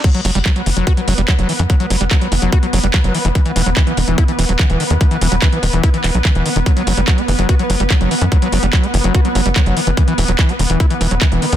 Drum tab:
CC |x---------------|----------------|----------------|----------------|
HH |xxoxxxoxxxoxxxox|xxoxxxoxxxoxxxox|xxoxxxoxxxoxxxox|xxoxxxoxxxoxxxox|
CP |----x-------x---|----x-------x---|----x-------x---|----x-----x-x---|
BD |o---o---o---o---|o---o---o---o---|o---o---o---o---|o---o---o---o---|

CC |----------------|----------------|----------------|
HH |xxoxxxoxxxoxxxox|xxoxxxoxxxoxxxox|xxoxxxoxxxoxxxox|
CP |----x-------x---|----x-------x---|----x-------x---|
BD |o---o---o---o---|o---o---o---o---|o---o---o---o---|